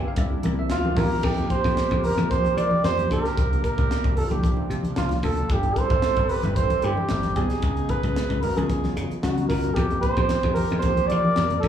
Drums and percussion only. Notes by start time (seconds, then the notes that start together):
0.16 kick, closed hi-hat
0.43 closed hi-hat, high conga
0.70 snare, closed hi-hat
0.85 high conga
0.97 kick, open hi-hat, high conga, low conga
1.23 kick, crash
1.37 closed hi-hat
1.50 kick, closed hi-hat
1.64 kick, snare, closed hi-hat
1.77 snare, closed hi-hat
1.91 kick, closed hi-hat
2.04 open hi-hat, low conga
2.19 closed hi-hat, high conga
2.31 kick, closed hi-hat, high conga
2.45 closed hi-hat, high conga
2.58 closed hi-hat
2.71 high conga
2.84 snare, closed hi-hat
2.98 closed hi-hat, high conga
3.10 kick, closed hi-hat, low conga
3.25 snare, closed hi-hat
3.37 kick, closed hi-hat
3.53 closed hi-hat
3.64 kick, closed hi-hat
3.78 kick, closed hi-hat
3.91 snare, closed hi-hat
4.04 kick, closed hi-hat
4.17 open hi-hat, low conga
4.30 closed hi-hat, high conga
4.43 kick, closed hi-hat, high conga
4.57 high conga
4.71 closed hi-hat
4.83 closed hi-hat, high conga
4.96 snare, closed hi-hat
5.09 snare, closed hi-hat, high conga
5.23 kick, open hi-hat, low conga
5.37 closed hi-hat
5.49 kick, closed hi-hat
5.63 closed hi-hat
5.76 kick, closed hi-hat
5.90 kick, closed hi-hat
6.02 snare, closed hi-hat
6.16 kick, closed hi-hat
6.29 open hi-hat
6.43 closed hi-hat, high conga
6.56 kick, closed hi-hat, high conga
6.70 closed hi-hat, high conga
6.82 closed hi-hat
6.97 high conga
7.09 snare, closed hi-hat
7.23 snare, closed hi-hat, high conga
7.36 kick, closed hi-hat, low conga
7.50 snare, closed hi-hat
7.62 kick, closed hi-hat
7.77 closed hi-hat
7.89 kick, closed hi-hat, low conga
8.03 kick, closed hi-hat
8.16 snare, closed hi-hat
8.30 kick, closed hi-hat
8.43 open hi-hat, low conga
8.57 closed hi-hat, high conga
8.70 kick, closed hi-hat, high conga
8.84 snare, high conga
8.97 closed hi-hat, low conga
9.11 closed hi-hat, high conga
9.23 snare, closed hi-hat, high conga
9.37 closed hi-hat, high conga
9.50 kick, snare, open hi-hat, low conga
9.64 closed hi-hat, low conga
9.76 kick, closed hi-hat
9.90 closed hi-hat
10.03 kick, closed hi-hat
10.17 kick, closed hi-hat
10.29 snare, closed hi-hat
10.43 kick, closed hi-hat
10.56 open hi-hat, low conga
10.70 closed hi-hat
10.82 kick, closed hi-hat, high conga
10.97 closed hi-hat, high conga
11.10 closed hi-hat
11.25 high conga
11.36 snare, closed hi-hat
11.50 closed hi-hat, high conga
11.63 kick, closed hi-hat, low conga